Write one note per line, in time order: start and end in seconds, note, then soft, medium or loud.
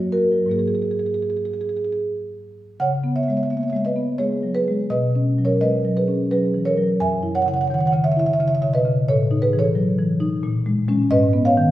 0.00 0.46 F#2 medium
0.00 0.23 F#3 soft
0.00 0.10 C#5 medium
0.12 0.43 F#4 soft
0.12 0.49 A#4 medium
0.32 0.47 F#3 soft
0.46 2.74 G#2 soft
0.46 2.75 F#3 soft
0.46 2.76 A#3 soft
0.51 0.59 G#4 medium
0.59 0.68 G#4 soft
0.68 0.75 G#4 medium
0.75 0.82 G#4 soft
0.82 0.91 G#4 soft
0.91 0.99 G#4 soft
0.99 1.06 G#4 medium
1.06 1.14 G#4 soft
1.14 1.22 G#4 medium
1.22 1.30 G#4 soft
1.30 1.37 G#4 medium
1.37 1.45 G#4 soft
1.45 1.54 G#4 soft
1.54 1.61 G#4 soft
1.61 1.69 G#4 soft
1.69 1.77 G#4 soft
1.77 1.84 G#4 soft
1.84 1.92 G#4 soft
1.92 2.02 G#4 medium
2.80 4.87 C#3 medium
2.80 3.14 C#5 medium
2.80 3.14 F#5 medium
3.04 3.41 B3 soft
3.16 3.23 C#5 soft
3.16 3.23 E5 medium
3.23 3.31 C#5 soft
3.23 3.30 E5 medium
3.28 3.65 G#3 soft
3.28 3.38 C#5 soft
3.28 3.37 E5 medium
3.37 3.45 C#5 soft
3.37 3.43 E5 soft
3.43 3.53 C#5 soft
3.43 3.50 E5 medium
3.50 3.74 A#3 soft
3.50 3.61 C#5 soft
3.50 3.57 E5 soft
3.57 3.68 C#5 soft
3.57 3.63 E5 medium
3.63 3.70 E5 soft
3.68 3.75 C#5 soft
3.68 3.76 E5 medium
3.73 4.11 G#3 soft
3.73 3.81 C#5 soft
3.73 3.82 E5 soft
3.85 4.18 B4 medium
3.85 4.19 D#5 medium
3.96 4.34 B3 soft
4.18 4.57 G#3 soft
4.18 4.53 G#4 soft
4.18 4.53 C#5 medium
4.43 4.67 F#3 soft
4.55 4.89 G#4 medium
4.55 4.89 B4 medium
4.68 4.91 G#3 soft
4.90 6.96 B2 medium
4.90 5.41 B4 medium
4.90 5.41 D#5 medium
5.15 5.53 C#4 soft
5.38 5.75 F#3 soft
5.45 5.61 A#4 medium
5.45 5.62 C#5 medium
5.61 5.84 G#3 soft
5.61 5.94 B4 medium
5.61 5.95 D#5 medium
5.85 6.22 F#3 soft
5.97 6.29 G#4 soft
5.97 6.30 B4 medium
6.08 6.45 C#4 soft
6.31 6.68 F#3 soft
6.31 6.64 G#4 medium
6.31 6.64 B4 medium
6.54 6.77 E3 soft
6.65 6.98 A#4 medium
6.65 6.99 C#5 medium
6.77 7.00 F#3 soft
7.00 9.04 F#2 medium
7.00 7.33 E5 medium
7.00 7.33 G#5 medium
7.23 7.60 E4 soft
7.35 7.42 C#5 medium
7.35 7.42 F#5 medium
7.42 7.49 C#5 soft
7.42 7.48 F#5 medium
7.46 7.83 C#3 medium
7.46 7.57 C#5 soft
7.46 7.54 F#5 medium
7.54 7.64 C#5 soft
7.54 7.61 F#5 medium
7.61 7.71 C#5 medium
7.61 7.67 F#5 medium
7.67 7.93 D#3 soft
7.67 7.79 C#5 soft
7.67 7.74 F#5 medium
7.74 7.80 F#5 medium
7.79 7.86 C#5 soft
7.79 7.87 F#5 medium
7.86 7.92 C#5 soft
7.86 7.93 F#5 medium
7.92 8.30 C#3 soft
7.92 8.00 C#5 medium
7.92 8.02 F#5 medium
8.04 8.12 C#5 medium
8.04 8.12 E5 medium
8.12 8.19 C#5 soft
8.12 8.19 E5 medium
8.17 8.53 E4 medium
8.17 8.27 C#5 soft
8.17 8.26 E5 medium
8.26 8.34 C#5 soft
8.26 8.33 E5 medium
8.33 8.41 C#5 soft
8.33 8.40 E5 medium
8.40 8.76 C#3 medium
8.40 8.48 C#5 soft
8.40 8.48 E5 medium
8.48 8.55 C#5 soft
8.48 8.55 E5 medium
8.55 8.63 C#5 soft
8.55 8.62 E5 medium
8.62 8.85 B2 soft
8.62 8.69 C#5 soft
8.62 8.70 E5 medium
8.73 9.06 B4 medium
8.73 9.07 D#5 medium
8.85 9.08 C#3 medium
9.08 10.40 A2 medium
9.08 9.41 A4 medium
9.08 9.41 C#5 medium
9.31 9.67 D#4 medium
9.42 9.59 G#4 medium
9.42 9.59 B4 medium
9.53 9.90 E3 medium
9.59 10.07 A4 medium
9.59 10.08 C#5 medium
9.75 9.98 F#3 medium
9.99 10.35 E3 medium
10.20 10.43 D#4 medium
10.43 11.09 A#2 medium
10.66 10.87 G#3 medium
10.88 11.09 G#3 medium
10.88 11.09 C#4 medium
11.11 11.71 G#2 medium
11.11 11.44 B4 medium
11.11 11.44 D#5 loud
11.33 11.71 B3 medium
11.45 11.71 C#5 medium
11.45 11.71 F5 medium
11.57 11.71 D#3 medium